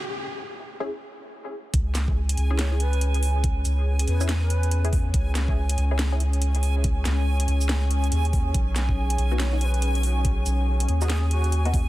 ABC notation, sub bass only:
X:1
M:4/4
L:1/8
Q:"Swing 16ths" 1/4=141
K:C#m
V:1 name="Sub bass" clef=bass
z8 | C,,3 C,,4- C,,- | C,, C,,2 E,,4- E,, | C,,3 C,,4- C,,- |
C,, C,,2 C,,3 D,,2 | B,,,3 B,,,4- B,,,- | B,,, B,,,2 D,,4- D,, |]